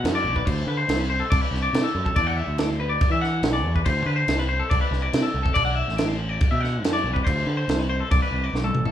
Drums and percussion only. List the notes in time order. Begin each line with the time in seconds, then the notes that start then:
0.05 snare, crash
0.36 kick
0.47 kick, crash
0.89 snare, crash
1.31 kick, crash
1.55 snare
1.74 snare, crash
2.06 kick
2.16 kick, crash
2.58 snare, crash
3.01 kick, crash
3.24 snare
3.43 snare, crash
3.76 kick
3.86 kick, crash
4.28 snare, crash
4.71 kick, crash
4.93 snare
5.13 snare, crash
5.46 kick
5.55 kick, crash
5.89 snare
5.98 snare, crash
6.41 kick, crash
6.64 snare
6.84 snare, crash
7.16 kick
7.27 kick, crash
7.69 snare, crash
8.11 kick, crash
8.55 snare
8.64 high tom
8.75 mid tom
8.86 floor tom